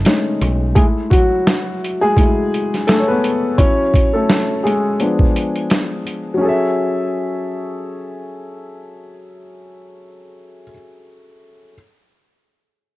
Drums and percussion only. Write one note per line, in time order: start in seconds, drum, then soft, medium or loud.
0.05 snare loud
0.05 closed hi-hat medium
0.42 closed hi-hat medium
0.76 kick loud
0.76 closed hi-hat medium
1.11 kick loud
1.11 closed hi-hat medium
1.47 snare loud
1.47 closed hi-hat medium
1.84 closed hi-hat medium
2.17 kick medium
2.17 closed hi-hat medium
2.54 closed hi-hat medium
2.74 snare soft
2.74 closed hi-hat soft
2.88 snare loud
2.88 closed hi-hat medium
3.24 closed hi-hat medium
3.58 kick loud
3.58 closed hi-hat medium
3.94 kick medium
3.94 closed hi-hat medium
4.30 snare loud
4.30 closed hi-hat medium
4.67 closed hi-hat medium
5.00 closed hi-hat medium
5.19 kick medium
5.36 closed hi-hat medium
5.56 closed hi-hat soft
5.70 snare loud
5.70 closed hi-hat medium
6.07 closed hi-hat medium